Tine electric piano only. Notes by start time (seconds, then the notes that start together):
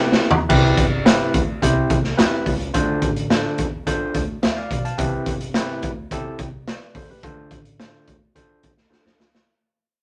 Already playing: C3 C4 E4 G4 B4
0.49 C3 C4 E4 G4 B4
1.05 C4 E4 G4 B4
1.62 C4 E4 G4 C5
2.17 C4 E4 G4 B4
2.74 D3 D4 F4 A4 C5
3.30 D4 F4 A4 C5
3.87 D4 F4 A4 C5
4.44 C5 E5
4.57 D5 F5
4.85 F5 A5
4.98 C3 C4 E4 G4 B4
5.55 C4 E4 G4 B4
6.12 C4 E4 G4 A4
6.68 B4 D5
6.96 A4 C5
7.10 G4 B4
7.24 D3 D4 F4 A4 C5
7.79 D4 F4 A4 C5
8.35 D4 F4 A4 C5
8.90 D4 F4 A4 C5